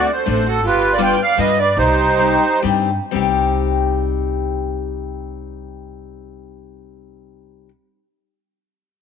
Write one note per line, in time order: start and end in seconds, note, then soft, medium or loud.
0.00 0.12 D5 loud
0.12 0.28 A4 medium
0.12 0.28 C5 medium
0.26 0.63 A1 medium
0.26 0.45 A3 medium
0.26 0.45 C4 medium
0.26 0.46 D4 medium
0.26 0.46 F#4 medium
0.26 0.48 C5 medium
0.30 0.46 A4 medium
0.49 0.64 F#4 medium
0.49 0.65 A4 medium
0.63 1.12 G1 medium
0.63 1.16 F4 medium
0.63 0.91 G4 medium
0.63 0.94 B4 medium
0.94 1.02 B4 medium
0.94 1.01 D5 medium
0.98 1.19 G3 medium
0.98 1.18 B3 medium
0.98 1.19 D4 soft
0.98 1.19 F4 medium
1.03 1.20 D5 medium
1.03 1.21 G5 medium
1.23 1.38 D5 medium
1.23 1.40 F5 loud
1.37 1.78 G2 medium
1.37 1.57 G3 medium
1.37 1.58 B3 medium
1.37 1.58 D4 medium
1.37 1.58 F4 medium
1.37 1.58 B4 medium
1.37 1.59 D#5 medium
1.59 1.77 B4 medium
1.59 1.78 D5 medium
1.77 2.33 C2 loud
1.77 2.60 D#4 medium
1.77 2.61 G4 medium
1.77 2.61 C5 medium
2.18 2.41 G3 medium
2.18 2.42 C4 medium
2.18 2.42 D#4 medium
2.18 2.42 G4 medium
2.62 2.97 G2 medium
2.62 2.89 G3 medium
2.62 2.89 C4 medium
2.62 2.89 D#4 medium
2.62 2.89 G4 medium
3.11 7.70 C2 medium
3.11 7.68 G3 medium
3.11 7.69 C4 medium
3.11 7.70 D#4 medium
3.16 7.70 G4 medium